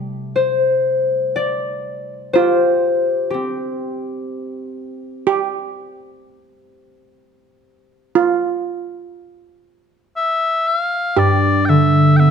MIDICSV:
0, 0, Header, 1, 4, 480
1, 0, Start_track
1, 0, Tempo, 1003344
1, 1134, Time_signature, 3, 2, 24, 8
1, 1134, Tempo, 966184
1, 4494, Tempo, 1018676
1, 5989, End_track
2, 0, Start_track
2, 0, Title_t, "Bagpipes"
2, 0, Program_c, 0, 109
2, 4979, Note_on_c, 0, 76, 73
2, 5221, Note_off_c, 0, 76, 0
2, 5221, Note_on_c, 0, 76, 70
2, 5273, Note_off_c, 0, 76, 0
2, 5273, Note_on_c, 0, 77, 70
2, 5460, Note_off_c, 0, 77, 0
2, 5460, Note_on_c, 0, 74, 65
2, 5681, Note_off_c, 0, 74, 0
2, 5681, Note_on_c, 0, 79, 67
2, 5699, Note_off_c, 0, 79, 0
2, 5699, Note_on_c, 0, 76, 67
2, 5922, Note_off_c, 0, 76, 0
2, 5922, Note_on_c, 0, 79, 66
2, 5937, Note_off_c, 0, 79, 0
2, 5937, Note_on_c, 0, 76, 66
2, 5989, Note_off_c, 0, 76, 0
2, 5989, End_track
3, 0, Start_track
3, 0, Title_t, "Harp"
3, 0, Program_c, 1, 46
3, 0, Note_on_c, 1, 57, 42
3, 0, Note_on_c, 1, 74, 52
3, 171, Note_on_c, 1, 72, 77
3, 193, Note_off_c, 1, 74, 0
3, 649, Note_on_c, 1, 74, 81
3, 775, Note_off_c, 1, 57, 0
3, 1115, Note_off_c, 1, 72, 0
3, 1117, Note_on_c, 1, 72, 87
3, 1135, Note_on_c, 1, 67, 61
3, 1548, Note_off_c, 1, 74, 0
3, 1596, Note_off_c, 1, 67, 0
3, 1598, Note_on_c, 1, 67, 67
3, 1616, Note_on_c, 1, 60, 50
3, 2099, Note_off_c, 1, 72, 0
3, 2767, Note_off_c, 1, 67, 0
3, 3106, Note_off_c, 1, 60, 0
3, 5450, Note_on_c, 1, 43, 51
3, 5697, Note_on_c, 1, 50, 42
3, 5933, Note_on_c, 1, 59, 47
3, 5989, Note_off_c, 1, 43, 0
3, 5989, Note_off_c, 1, 50, 0
3, 5989, Note_off_c, 1, 59, 0
3, 5989, End_track
4, 0, Start_track
4, 0, Title_t, "Steel pan"
4, 0, Program_c, 2, 114
4, 0, Note_on_c, 2, 67, 86
4, 1127, Note_on_c, 2, 65, 82
4, 1179, Note_off_c, 2, 67, 0
4, 2574, Note_on_c, 2, 67, 85
4, 2622, Note_off_c, 2, 65, 0
4, 4007, Note_on_c, 2, 65, 77
4, 4053, Note_off_c, 2, 67, 0
4, 5191, Note_off_c, 2, 65, 0
4, 5451, Note_on_c, 2, 67, 66
4, 5989, Note_off_c, 2, 67, 0
4, 5989, End_track
0, 0, End_of_file